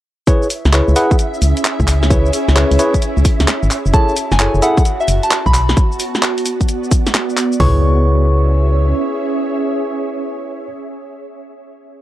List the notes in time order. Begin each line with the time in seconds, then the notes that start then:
0.27 C#4 E4 G#4 B4 C#5 E5, kick, closed hi-hat, cabasa
0.43 cabasa
0.47 G#4, open hi-hat, cabasa
0.65 C#2, snare, cabasa
0.73 E4 G#4 B4 C#5, clap, closed hi-hat, cabasa
0.81 E5
0.88 C#2, cabasa
0.96 E4 G#4 B4 F#5, open hi-hat, cabasa
1.11 kick, closed hi-hat, cabasa
1.19 closed hi-hat, cabasa
1.34 cabasa
1.42 C#2, open hi-hat, cabasa
1.57 closed hi-hat, cabasa
1.65 clap, closed hi-hat, cabasa
1.80 C#2, kick, cabasa
1.88 clap, open hi-hat, cabasa
2.03 snare, cabasa
2.10 E4 G#4 B4 C#5, kick, closed hi-hat, cabasa
2.26 cabasa
2.33 open hi-hat, cabasa
2.48 C#2, snare, cabasa
2.56 E4 G#4 B4 C#5, clap, closed hi-hat, cabasa
2.71 C#2, open hi-hat, cabasa
2.79 E4 G#4 B4 C#5, open hi-hat, cabasa
2.94 kick, closed hi-hat, cabasa
3.02 closed hi-hat, cabasa
3.17 C#2, cabasa
3.25 kick, open hi-hat, cabasa
3.40 C#2, snare, closed hi-hat, cabasa
3.48 clap, snare, closed hi-hat, cabasa
3.63 G#1, cabasa
3.70 F#4, clap, open hi-hat, cabasa
3.86 F#1, cabasa
3.94 E4 G#4 A4 C#5 A5, kick, closed hi-hat, cabasa
4.09 cabasa
4.16 A5, open hi-hat, cabasa
4.32 F#1 G#5, snare, cabasa
4.39 E4 G#4 A4 C#5, clap, closed hi-hat, cabasa
4.54 F#1, cabasa
4.62 E4 G#4 A4 E5 F#5, open hi-hat, cabasa
4.77 kick, closed hi-hat, cabasa
4.85 closed hi-hat, cabasa
5.00 E5, cabasa
5.08 F#1, open hi-hat, cabasa
5.23 A5, closed hi-hat, cabasa
5.31 clap, closed hi-hat, cabasa
5.46 B1 B5, kick, cabasa
5.54 B3, clap, open hi-hat, cabasa
5.69 snare, cabasa
5.77 kick, closed hi-hat, cabasa
5.92 cabasa
6.00 D5, open hi-hat, cabasa
6.15 snare, cabasa
6.23 clap, closed hi-hat, cabasa
6.38 open hi-hat, cabasa
6.46 open hi-hat, cabasa
6.61 kick, closed hi-hat, cabasa
6.69 closed hi-hat, cabasa
6.84 cabasa
6.91 kick, open hi-hat, cabasa
7.07 snare, closed hi-hat, cabasa
7.14 clap, snare, closed hi-hat, cabasa
7.30 cabasa
7.37 clap, open hi-hat, cabasa
7.52 cabasa
7.60 C#2 C#4 E4 G#4 B4 C#5 C#6, kick, floor tom, open hi-hat
7.69 G#4
7.77 C#5
7.82 E5